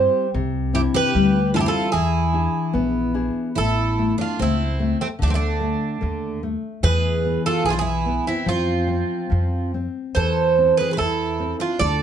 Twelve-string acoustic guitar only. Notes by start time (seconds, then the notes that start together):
Already playing: G4
0.75 E4
0.94 G4
1.54 F4
1.58 E4
1.66 F4
1.93 E4
3.55 E4
4.18 D4
4.39 C4
5.02 A3
5.22 A3
5.28 A3
5.34 A3
6.83 G#4
7.46 F4
7.69 D4 E4
7.81 E4
8.28 C4
8.50 C4
10.16 A4
10.80 G#4
10.91 G#4
10.97 E4
11.60 D4
11.81 A4